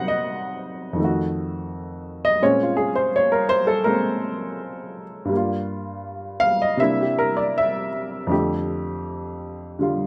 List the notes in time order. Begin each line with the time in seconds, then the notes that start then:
Already playing: C3 F#3 A#3 D#4 C5 D#5 F#5
0.08 D#5
0.93 F2 D#3
1.00 A3
1.04 F#4
2.25 D#5
2.42 A#2 G#3 C4 C#4 C#5
2.63 F4
2.77 G#4
2.95 C5
3.16 C#5
3.32 A#4
3.49 C5
3.67 A4
3.84 G#3 A#3 A#4
3.89 C4
5.25 G2
5.29 G3 A#3
5.37 F4
6.40 F5
6.62 D#5
6.77 C3 A#3 D4 E5
6.82 E4
7.01 G4
7.19 A#4
7.37 D5
7.58 E5
8.27 F2 D3 A3
8.31 G4
9.79 D3 G3 F4